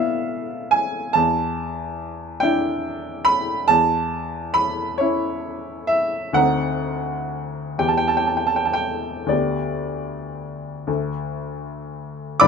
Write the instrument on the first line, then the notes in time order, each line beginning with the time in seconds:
upright piano
Already playing: B2 B3 E4 D5 E5 F5
0.71 G#5
1.13 E2 A5
2.40 D4 E4 G5
3.25 B5
3.68 E2 A5
4.54 B5
4.98 C#4 E4 C#5
5.87 E5
6.33 D2 C4 D#4 F#5
7.78 E2 B3 G4 G5
7.88 A5
7.97 G5
8.08 A5
8.17 G5
8.27 A5
8.37 G5
8.47 A5
8.56 G5
8.65 A5
8.73 G5
9.26 D2 D5
9.31 B3 G4
10.87 D2 A3 A4
12.40 G1 G2 D5 B5 D6